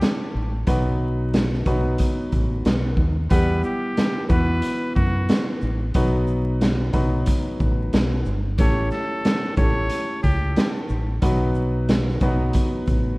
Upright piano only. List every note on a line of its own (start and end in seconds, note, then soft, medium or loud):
0.00 0.56 A3 medium
0.00 0.56 C#4 medium
0.00 0.56 E4 medium
0.00 0.56 G4 medium
0.00 0.57 A4 loud
0.67 1.59 F#3 medium
0.67 1.59 B3 medium
0.67 1.59 D#4 medium
0.67 1.60 F#4 medium
0.67 1.60 B4 loud
1.67 3.04 F#3 medium
1.67 3.04 B3 medium
1.67 3.04 D#4 medium
1.67 3.04 F#4 medium
1.67 3.04 B4 loud
3.30 4.23 G3 loud
3.30 4.23 B3 medium
3.30 4.23 E4 medium
3.30 4.23 G4 loud
3.30 4.23 F#5 medium
4.29 5.83 E3 loud
4.29 5.83 B3 medium
4.29 5.83 E4 medium
4.29 5.83 F#4 medium
4.29 5.83 B4 loud
5.95 6.87 F#3 medium
5.95 6.87 B3 medium
5.95 6.87 D#4 medium
5.95 6.87 F#4 medium
5.95 6.87 B4 loud
6.93 8.30 F#3 medium
6.93 8.31 B3 medium
6.93 8.31 D#4 medium
6.93 8.31 F#4 medium
6.93 8.31 B4 loud
8.59 9.51 A3 loud
8.59 9.51 C#4 loud
8.59 9.51 E4 medium
8.59 9.52 G4 medium
8.59 9.52 A4 loud
9.57 11.11 A3 medium
9.57 11.11 C#4 medium
9.57 11.11 E4 medium
9.57 11.11 G4 medium
9.57 11.11 A4 loud
11.22 12.14 F#3 loud
11.22 12.14 B3 medium
11.22 12.14 D#4 medium
11.22 12.15 F#4 loud
11.22 12.15 B4 loud
12.22 13.18 F#3 medium
12.22 13.18 B3 medium
12.22 13.18 D#4 medium
12.22 13.18 F#4 medium
12.22 13.18 B4 loud